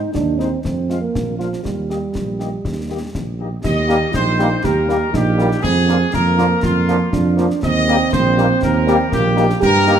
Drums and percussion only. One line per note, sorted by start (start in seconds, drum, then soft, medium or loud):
0.15 concert bass drum medium
0.15 snare medium
0.40 snare soft
0.65 concert bass drum medium
0.65 snare medium
0.90 snare soft
1.15 concert bass drum medium
1.15 snare medium
1.40 snare soft
1.53 snare soft
1.65 concert bass drum medium
1.65 snare medium
1.90 snare soft
2.15 concert bass drum medium
2.15 snare medium
2.40 snare soft
2.65 concert bass drum medium
2.65 snare medium
3.15 concert bass drum medium
3.15 snare medium
3.64 concert bass drum medium
3.64 snare medium
3.64 crash medium
3.89 snare medium
4.14 concert bass drum medium
4.14 snare medium
4.39 snare medium
4.64 concert bass drum medium
4.64 snare medium
4.89 snare medium
5.14 concert bass drum medium
5.14 snare medium
5.39 snare medium
5.51 snare medium
5.64 concert bass drum medium
5.64 snare medium
5.89 snare medium
6.14 concert bass drum medium
6.14 snare medium
6.38 snare medium
6.63 concert bass drum medium
6.63 snare medium
6.88 snare medium
7.13 concert bass drum medium
7.13 snare medium
7.38 snare medium
7.50 snare medium
7.63 concert bass drum medium
7.63 snare medium
7.63 crash soft
7.88 snare medium
8.13 concert bass drum medium
8.13 snare medium
8.38 snare medium
8.63 concert bass drum medium
8.63 snare medium
8.88 snare medium
9.12 concert bass drum medium
9.12 snare medium
9.37 snare medium
9.50 snare medium
9.62 concert bass drum medium
9.62 snare medium
9.87 snare medium